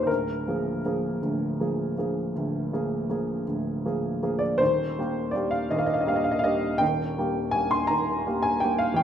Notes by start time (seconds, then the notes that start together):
Already playing: D#1 D#2 D#3 A#3 G4 C5 D#5
0.03 D2 A#4 C5
0.10 D1
0.48 F3 A#3 G#4
0.85 F3 A#3 G#4
1.22 D1 D2
1.60 F3 A#3 G#4
1.98 F3 A#3 G#4
2.36 D1 D2
2.73 F3 A#3 G#4
3.09 F3 A#3 G#4
3.47 D1 D2
3.85 F3 A#3 G#4
4.23 F3 A#3 G#4
4.39 D5
4.58 D#1 D#2 C5
4.98 G3 A#3 G4
5.31 G3 A#3 D5
5.35 G4
5.51 F5
5.71 D#1 D#2 D#5
5.79 F5
5.86 D#5
5.94 F5
6.01 D#5
6.06 G3 A#3 G4 F5
6.16 D#5
6.24 F5
6.31 D#5
6.39 F5
6.44 G3 A#3 G4 D#5
6.78 D#1 D#2 G5
7.18 G3 A#3 G4
7.51 G3 A#3 G4 G#5
7.71 C6
7.87 D#1 D#2 A#5
8.26 G3 A#3 G4
8.43 G#5
8.60 G3 A#3 G4 G5
8.79 F5
8.94 E2 G5
9.00 E1